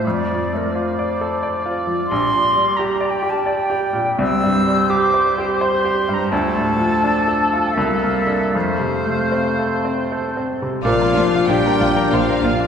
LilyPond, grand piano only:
\new Staff \with { instrumentName = "Grand piano" } { \time 3/4 \key f \major \tempo 4 = 85 \tuplet 3/2 { f,8 f8 a8 f'8 d''8 a'8 d''8 f'8 f8 } | \tuplet 3/2 { bes,,8 bes,8 g8 g'8 d''8 g'8 d''8 g'8 bes,8 } | \tuplet 3/2 { c,8 g,8 g8 g'8 c''8 g'8 c''8 g'8 g,8 } | \tuplet 3/2 { d,8 a,8 f8 d'8 a'8 f'8 c,8 bes8 <d' a'>8 } |
\tuplet 3/2 { f,8 c8 a8 c'8 a'8 c'8 a'8 c'8 c8 } | \key bes \major bes,16 bes16 d'16 f'16 d'16 bes'16 f'16 bes'16 c''16 bes'16 f'16 d'16 | }